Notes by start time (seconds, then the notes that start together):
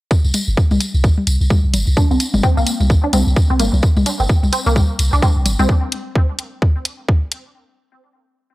0.11 kick, tambourine
0.24 C2, tambourine
0.34 closed hi-hat, high tom, tambourine
0.48 G1, tambourine
0.57 kick, tambourine
0.71 C2, high tom, tambourine
0.81 closed hi-hat, tambourine
0.94 C2, tambourine
1.04 kick, tambourine
1.18 high tom
1.27 C2, closed hi-hat, tambourine
1.41 C2, tambourine
1.50 kick, high tom, tambourine
1.64 C2
1.74 G1, closed hi-hat, tambourine, low conga
1.87 C2, tambourine
1.97 D4, kick, high tom, tambourine
2.11 C2 C4, tambourine
2.20 closed hi-hat, tambourine
2.34 G1, high tom, tambourine, low conga
2.43 C4, kick, tambourine
2.57 C2 A#3, tambourine
2.67 closed hi-hat, tambourine
2.80 C2, high tom, tambourine
2.90 kick, tambourine
3.04 D4
3.13 C2 C4, closed hi-hat, high tom, tambourine
3.27 C2, tambourine
3.36 kick, tambourine
3.50 C2 C4
3.59 G1 A#3, closed hi-hat, high tom, tambourine
3.73 C2, tambourine, low conga
3.83 kick, tambourine
3.97 C2, high tom, tambourine
4.06 D4, closed hi-hat, tambourine
4.20 G1 C4, tambourine
4.29 kick, tambourine
4.43 C2, high tom, tambourine
4.53 C4, closed hi-hat, tambourine
4.66 C2 A#3, tambourine
4.76 kick, high tom, tambourine
4.99 C2, closed hi-hat, tambourine
5.13 C2 D4, tambourine
5.22 C4, kick, high tom, tambourine
5.36 C2
5.46 G1, closed hi-hat, tambourine, low conga
5.59 C2 C4, high tom, tambourine
5.69 kick
5.92 closed hi-hat
6.15 kick
6.39 closed hi-hat
6.62 kick
6.85 closed hi-hat
7.09 kick
7.32 closed hi-hat